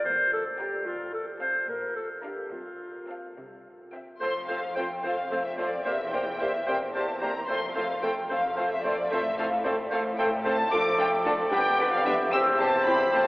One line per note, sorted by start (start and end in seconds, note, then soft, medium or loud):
0.05 0.70 E1 medium
0.05 0.70 E2 medium
0.05 0.32 C5 medium
0.33 0.45 A4 medium
0.58 0.79 C4 medium
0.58 0.87 G4 soft
0.58 0.79 G5 medium
0.58 0.79 A#5 soft
0.85 1.52 F1 medium
0.85 1.52 F2 medium
0.85 1.13 F4 medium
1.13 1.26 A4 medium
1.41 1.62 C4 soft
1.41 1.68 C5 medium
1.41 1.61 F5 soft
1.41 1.62 A5 soft
1.68 2.35 A#1 medium
1.68 2.35 A#2 medium
1.68 1.95 A#4 medium
1.96 2.08 A4 medium
2.24 2.44 D4 soft
2.24 2.51 G4 soft
2.24 2.44 F5 soft
2.24 2.45 A#5 soft
2.51 3.20 C2 soft
2.51 3.20 C3 soft
2.51 3.36 F4 soft
3.08 3.30 C4 soft
3.08 3.31 F5 soft
3.08 3.30 A5 soft
3.37 4.05 C2 soft
3.37 4.05 C3 soft
3.93 4.14 C4 soft
3.93 4.15 E5 soft
3.93 4.14 G5 soft
4.20 4.94 F1 medium
4.20 4.94 F2 medium
4.20 4.34 F3 soft
4.20 4.29 A3 soft
4.20 4.29 C4 soft
4.20 4.31 F4 soft
4.20 4.34 A4 soft
4.20 4.33 C5 soft
4.20 4.31 C5 soft
4.20 4.47 C6 medium
4.48 4.61 F3 soft
4.48 4.57 A3 soft
4.48 4.57 C4 soft
4.48 4.58 F4 soft
4.48 4.62 A4 soft
4.48 4.61 C5 soft
4.48 4.58 C5 soft
4.48 4.76 F5 medium
4.75 4.88 F3 soft
4.75 4.84 A3 soft
4.75 4.86 A3 medium
4.75 4.84 C4 soft
4.75 4.86 C4 soft
4.75 4.86 F4 soft
4.75 4.89 A4 soft
4.75 4.88 C5 soft
4.75 4.87 C5 soft
4.75 4.84 G5 medium
4.75 5.04 G5 soft
5.03 5.76 F1 soft
5.03 5.76 F2 medium
5.03 5.16 F3 soft
5.03 5.11 A3 soft
5.03 5.12 C4 soft
5.03 5.13 F4 soft
5.03 5.16 A4 soft
5.03 5.16 C5 soft
5.03 5.13 C5 soft
5.03 5.44 F5 medium
5.03 5.45 F5 medium
5.30 5.43 F3 soft
5.30 5.39 A3 soft
5.30 5.39 C4 soft
5.30 5.40 F4 soft
5.30 5.43 A4 soft
5.30 5.43 C5 soft
5.30 5.40 C5 soft
5.45 5.58 E5 medium
5.45 5.59 E5 soft
5.57 5.70 F3 soft
5.57 5.67 A3 medium
5.57 5.66 A3 soft
5.57 5.67 C4 soft
5.57 5.66 C4 soft
5.57 5.67 F4 soft
5.57 5.71 A4 soft
5.57 5.70 C5 soft
5.57 5.67 C5 soft
5.57 5.85 D5 medium
5.57 5.86 D5 soft
5.85 6.58 E1 medium
5.85 6.58 E2 medium
5.85 5.98 G3 soft
5.85 5.93 A#3 soft
5.85 5.93 C4 soft
5.85 5.93 G4 soft
5.85 5.98 A#4 soft
5.85 5.97 C5 soft
5.85 5.93 C5 soft
5.85 6.12 E5 medium
5.85 6.13 E5 medium
6.12 6.25 G3 soft
6.12 6.21 A#3 soft
6.12 6.20 C4 soft
6.12 6.21 G4 soft
6.12 6.25 A#4 soft
6.12 6.25 C5 soft
6.12 6.21 C5 soft
6.12 6.40 G5 medium
6.12 6.19 G5 medium
6.39 6.53 G3 soft
6.39 6.50 A#3 soft
6.39 6.48 A#3 soft
6.39 6.49 C4 medium
6.39 6.48 C4 soft
6.39 6.49 G4 soft
6.39 6.53 A#4 soft
6.39 6.52 C5 soft
6.39 6.48 C5 soft
6.39 6.67 E5 medium
6.66 7.39 E1 medium
6.66 7.39 E2 medium
6.66 6.79 G3 soft
6.66 6.76 A#3 soft
6.66 6.76 C4 soft
6.66 6.75 G4 soft
6.66 6.80 A#4 soft
6.66 6.79 C5 soft
6.66 6.75 C5 soft
6.66 6.76 G5 medium
6.66 6.95 G5 medium
6.94 7.07 G3 soft
6.94 7.03 A#3 soft
6.94 7.03 C4 soft
6.94 7.04 G4 soft
6.94 7.07 A#4 soft
6.94 7.07 C5 soft
6.94 7.04 C5 soft
6.94 7.21 A5 medium
7.21 7.33 G3 soft
7.21 7.30 A#3 soft
7.21 7.31 A#3 medium
7.21 7.30 C4 soft
7.21 7.32 C4 medium
7.21 7.29 G4 soft
7.21 7.35 A#4 soft
7.21 7.33 C5 soft
7.21 7.30 C5 soft
7.21 7.48 A#5 medium
7.21 7.28 A#5 medium
7.48 8.20 F1 medium
7.48 8.21 F2 medium
7.48 7.57 A3 medium
7.48 7.61 A3 soft
7.48 7.56 C4 soft
7.48 7.58 F4 soft
7.48 7.61 A4 soft
7.48 7.60 C5 soft
7.48 7.58 C5 soft
7.48 7.75 C6 medium
7.75 7.88 A3 soft
7.75 7.83 A3 soft
7.75 7.83 C4 soft
7.75 7.85 F4 medium
7.75 7.88 A4 soft
7.75 7.87 C5 soft
7.75 7.84 C5 soft
7.75 8.02 F5 medium
7.75 7.83 F5 medium
8.02 8.10 A3 soft
8.02 8.15 A3 soft
8.02 8.13 A3 medium
8.02 8.10 C4 soft
8.02 8.13 C4 medium
8.02 8.12 F4 soft
8.02 8.16 A4 soft
8.02 8.14 C5 soft
8.02 8.12 C5 soft
8.02 8.11 G5 medium
8.02 8.30 G5 medium
8.30 9.02 F1 medium
8.30 9.02 F2 medium
8.30 8.38 A3 medium
8.30 8.43 A3 soft
8.30 8.38 C4 soft
8.30 8.39 F4 soft
8.30 8.42 A4 medium
8.30 8.42 C5 medium
8.30 8.39 C5 soft
8.30 8.70 F5 medium
8.57 8.70 A3 soft
8.57 8.65 A3 soft
8.57 8.65 C4 soft
8.57 8.67 F4 soft
8.57 8.70 A4 soft
8.57 8.69 C5 soft
8.57 8.67 C5 soft
8.71 8.85 E5 medium
8.84 8.97 A3 soft
8.84 8.94 A3 medium
8.84 8.93 A3 soft
8.84 8.93 C4 soft
8.84 8.94 C4 medium
8.84 8.94 F4 soft
8.84 8.98 A4 soft
8.84 8.96 C5 soft
8.84 8.94 C5 soft
8.84 9.11 D5 medium
9.11 9.82 A1 medium
9.11 9.83 A2 medium
9.11 9.23 A3 medium
9.11 9.19 A3 medium
9.11 9.20 C4 medium
9.11 9.20 F4 medium
9.11 9.20 A4 medium
9.11 9.25 A4 medium
9.11 9.23 C5 medium
9.11 9.37 E5 medium
9.11 9.38 E5 medium
9.38 9.50 A3 soft
9.38 9.46 A3 soft
9.38 9.46 C4 soft
9.38 9.47 F4 medium
9.38 9.46 A4 soft
9.38 9.51 A4 soft
9.38 9.50 C5 medium
9.38 9.65 F5 medium
9.38 9.46 F5 medium
9.64 9.74 A3 medium
9.64 9.77 A3 medium
9.64 9.74 A3 soft
9.64 9.74 C4 medium
9.64 9.73 F4 medium
9.64 9.73 A4 soft
9.64 9.77 A4 medium
9.64 9.76 C5 soft
9.64 9.91 D5 medium
9.64 9.73 D5 medium
9.91 10.62 A1 medium
9.91 10.63 A2 medium
9.91 10.00 A3 medium
9.91 10.04 A3 medium
9.91 10.00 C4 medium
9.91 10.00 F4 soft
9.91 10.00 A4 soft
9.91 10.04 A4 medium
9.91 10.03 C5 medium
9.91 9.98 F5 medium
9.91 10.00 F5 medium
10.18 10.30 A3 soft
10.18 10.26 A3 medium
10.18 10.27 C4 medium
10.18 10.27 F4 medium
10.18 10.31 A4 medium
10.18 10.27 A4 medium
10.18 10.31 C5 medium
10.18 10.26 G5 medium
10.18 10.45 G5 medium
10.45 10.53 A3 medium
10.45 10.57 A3 medium
10.45 10.55 A3 medium
10.45 10.53 C4 soft
10.45 10.55 C4 medium
10.45 10.53 F4 medium
10.45 10.54 A4 medium
10.45 10.58 A4 soft
10.45 10.57 C5 medium
10.45 10.72 A5 medium
10.71 11.42 F1 medium
10.71 11.42 F2 medium
10.71 10.80 A3 medium
10.71 11.53 A3 medium
10.71 10.80 D4 medium
10.71 10.80 F4 medium
10.71 11.53 A4 medium
10.71 10.80 A4 medium
10.71 12.29 D5 medium
10.71 10.98 D6 medium
10.71 10.99 D6 medium
10.98 11.07 A3 soft
10.98 11.06 D4 soft
10.98 11.07 F4 medium
10.98 11.07 A4 medium
10.98 11.25 G5 medium
10.98 11.07 G5 medium
11.24 11.32 A3 medium
11.24 11.35 A3 medium
11.24 11.33 D4 soft
11.24 11.35 D4 medium
11.24 11.33 F4 medium
11.24 11.33 A4 medium
11.24 11.51 A5 medium
11.24 11.34 A5 medium
11.51 12.23 F1 medium
11.51 12.24 F2 medium
11.51 11.59 G3 medium
11.51 12.35 B3 medium
11.51 11.60 D4 medium
11.51 11.59 G4 medium
11.51 13.15 G4 medium
11.51 11.60 B4 medium
11.51 11.91 G5 medium
11.51 11.92 G5 medium
11.79 11.87 G3 medium
11.79 11.87 D4 medium
11.79 11.87 G4 medium
11.79 11.87 B4 medium
11.93 12.06 F5 medium
12.05 12.14 G3 medium
12.05 12.15 B3 medium
12.05 12.15 D4 medium
12.05 12.14 D4 medium
12.05 12.13 G4 medium
12.05 12.13 B4 medium
12.05 12.32 E5 medium
12.05 12.14 E5 medium
12.32 13.04 E1 medium
12.32 13.04 E2 medium
12.32 12.41 G3 medium
12.32 12.41 C4 medium
12.32 13.27 C4 medium
12.32 12.41 G4 medium
12.32 13.27 C5 medium
12.32 12.41 C5 medium
12.32 12.59 E6 medium
12.32 12.41 E6 medium
12.59 12.68 G3 medium
12.59 12.68 C4 medium
12.59 12.68 G4 medium
12.59 12.68 C5 medium
12.59 12.86 A5 medium
12.85 12.95 G3 soft
12.85 12.95 C4 medium
12.85 12.96 C4 medium
12.85 12.96 E4 medium
12.85 12.95 G4 medium
12.85 12.95 C5 medium
12.85 13.13 B5 medium
13.13 13.27 F1 medium
13.13 13.27 F2 medium
13.13 13.22 A3 medium
13.13 13.23 C4 medium
13.13 13.22 F4 medium
13.13 13.27 F4 medium
13.13 13.22 C5 medium
13.13 13.27 A5 medium